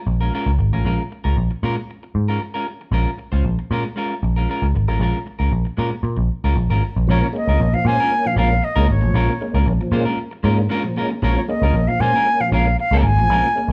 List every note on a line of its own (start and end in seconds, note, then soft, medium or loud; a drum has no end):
0.06 0.29 A#1 medium
0.06 muted clean electric guitar stroke soft
0.21 0.32 G#3 medium
0.21 0.33 C#4 medium
0.21 0.32 F4 medium
0.21 0.32 A#4 medium
0.34 0.49 G#3 medium
0.34 0.50 C#4 medium
0.34 0.50 F4 medium
0.34 0.50 A#4 medium
0.46 0.57 C#2 medium
0.59 0.70 G#1 medium
0.59 muted clean electric guitar stroke soft
0.73 0.83 A1 medium
0.73 0.84 G#3 soft
0.73 0.84 C#4 soft
0.73 0.84 F4 medium
0.73 0.84 A#4 medium
0.85 0.97 A#1 medium
0.85 1.01 G#3 medium
0.85 1.01 C#4 medium
0.85 1.02 F4 medium
0.85 1.02 A#4 medium
1.11 muted clean electric guitar stroke soft
1.24 1.35 C#2 medium
1.24 1.37 G#3 medium
1.24 1.36 C#4 soft
1.24 1.36 F4 medium
1.24 1.36 A#4 medium
1.37 1.49 A#1 medium
1.51 muted clean electric guitar stroke soft
1.63 1.75 A#2 loud
1.63 1.79 G#3 medium
1.63 1.77 C#4 medium
1.63 1.76 F4 medium
1.63 1.75 A#4 medium
1.77 muted clean electric guitar stroke soft
1.90 muted clean electric guitar stroke soft
2.03 muted clean electric guitar stroke soft
2.15 2.37 G#2 medium
2.28 2.40 G#3 medium
2.28 2.41 C#4 medium
2.28 2.41 F4 medium
2.28 2.42 A#4 medium
2.41 muted clean electric guitar stroke soft
2.54 2.66 G#3 medium
2.54 2.67 C#4 medium
2.54 2.67 F4 medium
2.54 2.67 A#4 medium
2.67 muted clean electric guitar stroke soft
2.81 muted clean electric guitar stroke soft
2.92 3.04 A#1 loud
2.92 3.09 G#3 medium
2.92 3.09 C#4 medium
2.92 3.10 F4 medium
2.92 3.10 A#4 medium
3.18 muted clean electric guitar stroke soft
3.32 3.43 C#2 medium
3.32 3.45 G#3 soft
3.32 3.45 C#4 soft
3.32 3.44 F4 soft
3.32 3.44 C5 medium
3.44 3.56 A#1 medium
3.59 muted clean electric guitar stroke soft
3.71 3.83 A#2 medium
3.71 3.87 G#3 medium
3.71 3.85 C#4 medium
3.71 3.85 F4 medium
3.71 3.84 A#4 medium
3.85 muted clean electric guitar stroke soft
3.96 4.13 G#3 medium
3.96 4.13 C#4 medium
3.96 4.14 F4 medium
3.96 4.14 A#4 medium
4.23 4.45 A#1 medium
4.23 muted clean electric guitar stroke soft
4.36 4.48 G#3 medium
4.36 4.48 C#4 medium
4.36 4.49 F4 medium
4.36 4.48 A#4 medium
4.49 4.65 G#3 medium
4.49 4.66 C#4 medium
4.49 4.66 F4 medium
4.49 4.66 A#4 medium
4.62 4.73 C#2 medium
4.75 4.88 G#1 medium
4.75 muted clean electric guitar stroke soft
4.88 4.99 A1 medium
4.88 4.99 G#3 soft
4.88 5.00 C#4 medium
4.88 5.00 F4 medium
4.88 5.00 A#4 medium
5.00 5.12 A#1 loud
5.00 5.17 G#3 medium
5.00 5.17 C#4 medium
5.00 5.18 F4 medium
5.00 5.18 A#4 medium
5.26 muted clean electric guitar stroke soft
5.39 5.51 C#2 medium
5.39 5.52 G#3 soft
5.39 5.52 C#4 soft
5.39 5.52 F4 soft
5.39 5.51 A#4 medium
5.52 5.64 A#1 medium
5.65 muted clean electric guitar stroke soft
5.77 5.90 A#2 medium
5.77 5.94 G#3 medium
5.77 5.91 C#4 medium
5.77 5.90 F4 medium
5.77 5.90 A#4 medium
5.91 muted clean electric guitar stroke soft
6.03 6.16 A#2 medium
6.03 muted clean electric guitar stroke soft
6.17 6.28 A#1 medium
6.17 muted clean electric guitar stroke soft
6.44 6.55 C#2 medium
6.44 6.55 G#3 medium
6.44 6.56 C#4 medium
6.44 6.57 F4 medium
6.44 6.57 A#4 medium
6.56 6.68 A#1 medium
6.56 muted clean electric guitar stroke soft
6.70 6.81 G#1 medium
6.70 6.83 G#3 medium
6.70 6.83 C#4 medium
6.70 6.83 F4 medium
6.70 6.84 A#4 medium
6.84 muted clean electric guitar stroke soft
6.96 7.07 A#1 medium
6.96 muted clean electric guitar stroke soft
7.07 7.20 A#1 loud
7.07 7.25 A#2 medium
7.07 7.25 F3 medium
7.07 7.25 G#3 medium
7.07 7.26 C#4 medium
7.07 7.26 F4 medium
7.07 7.26 A#4 loud
7.07 7.21 C#5 loud
7.22 7.27 A#3 soft
7.22 7.27 C#4 soft
7.22 7.28 C#5 medium
7.33 7.50 G#3 medium
7.33 7.50 A#3 medium
7.33 7.51 C#4 medium
7.33 7.75 D#5 medium
7.33 muted clean electric guitar stroke soft
7.48 7.58 C#2 medium
7.48 7.59 G#3 soft
7.48 7.60 C#4 medium
7.48 7.60 F4 medium
7.48 7.60 A#4 medium
7.59 7.72 A#1 loud
7.59 7.76 A#3 medium
7.59 7.77 C#4 medium
7.59 muted clean electric guitar stroke soft
7.73 7.89 A#2 medium
7.73 7.89 F3 medium
7.73 7.88 F5 loud
7.73 muted clean electric guitar stroke soft
7.85 7.97 A#2 loud
7.85 8.00 G#3 medium
7.85 8.02 A#3 medium
7.85 8.03 C#4 medium
7.85 8.00 C#4 medium
7.85 8.00 F4 medium
7.85 8.28 G#5 loud
7.89 8.00 C5 medium
8.00 8.13 G#3 medium
8.00 8.12 C#4 medium
8.00 8.12 F4 medium
8.00 8.12 A#4 medium
8.11 8.28 A#3 medium
8.11 8.29 C#4 medium
8.25 8.41 A#2 medium
8.25 8.41 F3 medium
8.25 8.38 F5 loud
8.25 muted clean electric guitar stroke medium
8.36 8.59 A#1 medium
8.36 8.54 G#3 medium
8.36 8.54 A#3 medium
8.36 8.51 C#4 medium
8.36 8.55 C#4 medium
8.36 8.50 F4 medium
8.36 8.49 A#4 medium
8.36 8.66 F5 loud
8.50 muted clean electric guitar stroke medium
8.62 8.93 D#5 loud
8.62 muted clean electric guitar stroke soft
8.76 8.87 C#2 loud
8.76 8.93 G#3 medium
8.76 8.86 G#3 medium
8.76 8.93 A#3 medium
8.76 8.87 C#4 medium
8.76 8.93 C#4 medium
8.76 8.87 F4 medium
8.76 8.87 A#4 loud
8.87 9.01 G#1 medium
8.87 muted clean electric guitar stroke soft
8.92 9.68 C#5 medium
9.01 9.13 A1 medium
9.01 9.14 A#2 medium
9.01 9.14 F3 medium
9.01 muted clean electric guitar stroke soft
9.14 9.27 A#1 loud
9.14 9.32 A#2 medium
9.14 9.32 F3 medium
9.14 9.31 G#3 medium
9.14 9.32 C#4 medium
9.14 9.32 F4 medium
9.14 9.32 A#4 medium
9.29 9.34 A#3 soft
9.29 9.34 C#4 soft
9.41 9.58 G#3 medium
9.41 9.58 A#3 medium
9.41 9.58 C#4 medium
9.41 muted clean electric guitar stroke soft
9.54 9.65 C#2 medium
9.54 9.66 G#3 medium
9.54 9.66 C#4 medium
9.54 9.67 F4 soft
9.54 9.67 A#4 medium
9.66 9.79 A#1 medium
9.66 9.73 A#3 soft
9.66 9.73 C#4 soft
9.66 muted clean electric guitar stroke soft
9.81 9.96 A#2 medium
9.81 9.96 F3 medium
9.81 muted clean electric guitar stroke soft
9.92 10.04 A#2 loud
9.92 10.06 G#3 medium
9.92 10.10 G#3 medium
9.92 10.10 A#3 medium
9.92 10.05 C#4 medium
9.92 10.10 C#4 medium
9.92 10.05 F4 medium
9.92 10.05 C5 medium
10.05 10.18 G#3 medium
10.05 10.18 C#4 medium
10.05 10.18 F4 medium
10.05 10.18 A#4 medium
10.31 muted clean electric guitar stroke soft
10.43 10.67 G#2 medium
10.43 10.60 G#3 medium
10.43 10.61 G#3 medium
10.43 10.61 A#3 medium
10.43 10.59 C#4 medium
10.43 10.62 C#4 loud
10.43 10.58 F4 medium
10.43 10.58 A#4 medium
10.59 muted clean electric guitar stroke soft
10.69 10.86 G#3 medium
10.69 10.76 A#3 soft
10.69 10.84 C#4 medium
10.69 10.76 C#4 soft
10.69 10.84 F4 medium
10.69 10.83 A#4 medium
10.84 11.00 A#2 medium
10.84 11.00 F3 medium
10.84 muted clean electric guitar stroke medium
10.96 11.13 G#3 medium
10.96 11.10 G#3 medium
10.96 11.13 A#3 medium
10.96 11.13 C#4 medium
10.96 11.10 C#4 medium
10.96 11.10 F4 medium
10.96 11.09 A#4 medium
11.10 muted clean electric guitar stroke medium
11.22 11.35 A#1 loud
11.22 11.39 A#2 medium
11.22 11.39 F3 medium
11.22 11.39 G#3 medium
11.22 11.39 C#4 medium
11.22 11.40 F4 medium
11.22 11.40 A#4 medium
11.22 11.35 C#5 medium
11.36 11.41 A#3 soft
11.36 11.41 C#4 medium
11.36 11.42 C#5 medium
11.48 11.65 G#3 medium
11.48 11.65 A#3 medium
11.48 11.65 C#4 medium
11.48 11.89 D#5 medium
11.48 muted clean electric guitar stroke soft
11.62 11.72 C#2 medium
11.62 11.74 G#3 medium
11.62 11.75 C#4 medium
11.62 11.75 F4 medium
11.62 11.74 A#4 medium
11.73 11.85 A#1 medium
11.73 11.91 A#3 medium
11.73 11.91 C#4 medium
11.88 12.03 A#2 medium
11.88 12.03 F3 medium
11.88 12.02 F5 loud
11.88 muted clean electric guitar stroke soft
11.99 12.12 A#2 loud
11.99 12.14 G#3 medium
11.99 12.16 A#3 medium
11.99 12.17 C#4 medium
11.99 12.14 C#4 medium
11.99 12.14 F4 medium
11.99 12.14 C5 medium
11.99 12.42 G#5 loud
12.16 12.27 G#3 medium
12.16 12.27 C#4 medium
12.16 12.26 F4 medium
12.16 12.26 A#4 medium
12.25 12.42 A#3 medium
12.25 12.43 C#4 medium
12.40 12.55 A#2 medium
12.40 12.55 F3 medium
12.40 12.52 F5 loud
12.40 muted clean electric guitar stroke soft
12.51 12.74 A#1 medium
12.51 12.68 G#3 medium
12.51 12.68 A#3 medium
12.51 12.68 C#4 medium
12.51 12.67 F4 medium
12.51 12.66 A#4 medium
12.51 12.77 F5 loud
12.67 muted clean electric guitar stroke soft
12.79 12.99 F5 loud
12.79 muted clean electric guitar stroke soft
12.91 13.02 C#2 medium
12.91 13.07 G#3 medium
12.91 13.07 A#3 medium
12.91 13.07 C#4 medium
12.91 13.05 C#4 medium
12.91 13.06 F4 medium
12.91 13.06 A#4 medium
12.95 13.04 G#3 medium
12.95 13.05 A#5 medium
13.03 13.15 G#1 loud
13.03 13.72 G#5 loud
13.03 muted clean electric guitar stroke soft
13.17 13.29 A1 medium
13.17 13.29 A#2 medium
13.17 13.29 F3 medium
13.17 muted clean electric guitar stroke soft
13.29 13.41 A#1 loud
13.29 13.46 A#2 medium
13.29 13.46 F3 medium
13.29 13.47 G#3 medium
13.29 13.47 C#4 medium
13.29 13.47 F4 medium
13.29 13.47 A#4 medium
13.44 13.48 A#3 soft
13.44 13.48 C#4 soft
13.55 13.72 G#3 medium
13.55 13.72 A#3 medium
13.55 13.72 C#4 medium
13.55 muted clean electric guitar stroke soft
13.68 13.72 C#2 medium